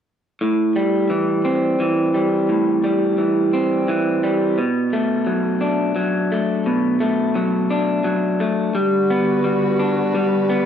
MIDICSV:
0, 0, Header, 1, 3, 480
1, 0, Start_track
1, 0, Tempo, 694766
1, 279, Time_signature, 6, 3, 24, 8
1, 7362, End_track
2, 0, Start_track
2, 0, Title_t, "String section"
2, 0, Program_c, 0, 48
2, 6040, Note_on_c, 0, 55, 44
2, 6042, Note_on_c, 0, 71, 57
2, 6043, Note_on_c, 0, 50, 49
2, 6045, Note_on_c, 0, 66, 46
2, 7362, Note_off_c, 0, 50, 0
2, 7362, Note_off_c, 0, 55, 0
2, 7362, Note_off_c, 0, 66, 0
2, 7362, Note_off_c, 0, 71, 0
2, 7362, End_track
3, 0, Start_track
3, 0, Title_t, "Clean electric guitar"
3, 0, Program_c, 1, 27
3, 284, Note_on_c, 1, 45, 41
3, 524, Note_on_c, 1, 55, 38
3, 759, Note_on_c, 1, 52, 37
3, 1000, Note_on_c, 1, 60, 37
3, 1235, Note_off_c, 1, 52, 0
3, 1243, Note_on_c, 1, 52, 42
3, 1472, Note_off_c, 1, 55, 0
3, 1481, Note_on_c, 1, 55, 40
3, 1482, Note_off_c, 1, 45, 0
3, 1722, Note_on_c, 1, 45, 44
3, 1952, Note_off_c, 1, 55, 0
3, 1960, Note_on_c, 1, 55, 43
3, 2189, Note_off_c, 1, 52, 0
3, 2197, Note_on_c, 1, 52, 40
3, 2200, Note_off_c, 1, 60, 0
3, 2441, Note_on_c, 1, 60, 45
3, 2674, Note_off_c, 1, 52, 0
3, 2683, Note_on_c, 1, 52, 44
3, 2916, Note_off_c, 1, 55, 0
3, 2921, Note_off_c, 1, 45, 0
3, 2924, Note_on_c, 1, 55, 45
3, 3160, Note_off_c, 1, 60, 0
3, 3161, Note_off_c, 1, 52, 0
3, 3162, Note_off_c, 1, 55, 0
3, 3163, Note_on_c, 1, 47, 48
3, 3405, Note_on_c, 1, 57, 45
3, 3637, Note_on_c, 1, 54, 36
3, 3875, Note_on_c, 1, 62, 41
3, 4113, Note_off_c, 1, 54, 0
3, 4115, Note_on_c, 1, 54, 45
3, 4357, Note_off_c, 1, 57, 0
3, 4362, Note_off_c, 1, 47, 0
3, 4365, Note_on_c, 1, 57, 38
3, 4603, Note_on_c, 1, 47, 40
3, 4831, Note_off_c, 1, 57, 0
3, 4839, Note_on_c, 1, 57, 44
3, 5078, Note_off_c, 1, 54, 0
3, 5081, Note_on_c, 1, 54, 43
3, 5320, Note_off_c, 1, 62, 0
3, 5323, Note_on_c, 1, 62, 42
3, 5554, Note_off_c, 1, 54, 0
3, 5557, Note_on_c, 1, 54, 42
3, 5797, Note_off_c, 1, 57, 0
3, 5802, Note_off_c, 1, 47, 0
3, 5805, Note_on_c, 1, 57, 39
3, 6041, Note_off_c, 1, 54, 0
3, 6043, Note_off_c, 1, 57, 0
3, 6044, Note_on_c, 1, 55, 44
3, 6289, Note_on_c, 1, 59, 41
3, 6519, Note_off_c, 1, 55, 0
3, 6522, Note_on_c, 1, 55, 41
3, 6763, Note_off_c, 1, 62, 0
3, 6766, Note_on_c, 1, 62, 42
3, 7006, Note_off_c, 1, 55, 0
3, 7009, Note_on_c, 1, 55, 44
3, 7248, Note_off_c, 1, 59, 0
3, 7251, Note_on_c, 1, 59, 43
3, 7362, Note_off_c, 1, 55, 0
3, 7362, Note_off_c, 1, 59, 0
3, 7362, Note_off_c, 1, 62, 0
3, 7362, End_track
0, 0, End_of_file